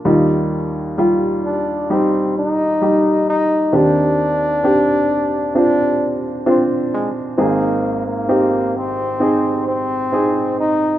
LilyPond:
<<
  \new Staff \with { instrumentName = "Grand piano" } { \time 4/4 \key ees \major \tempo 4 = 66 <g ees' f'>4 <g f' g'>4 <g ees' g'>4 <g ees' g'>4 | <c' d' g'>4 <c' d' g'>4 <c' d' f'>4 <c' d' f'>4 | <c' ees' aes'>4 <c' ees' g'>4 <c' ees' aes'>4 <c' ees' aes'>4 | }
  \new Staff \with { instrumentName = "Grand piano" } { \clef bass \time 4/4 \key ees \major <ees, ees>1 | <ees, ees>1 | <aes,, aes,>1 | }
  \new Staff \with { instrumentName = "Trombone" } { \time 4/4 \key ees \major r4. d'8 c'8 ees'4 ees'8 | d'2 d'8. r16 c'8 aes8 | bes8. bes8. c'4 c'4 ees'8 | }
>>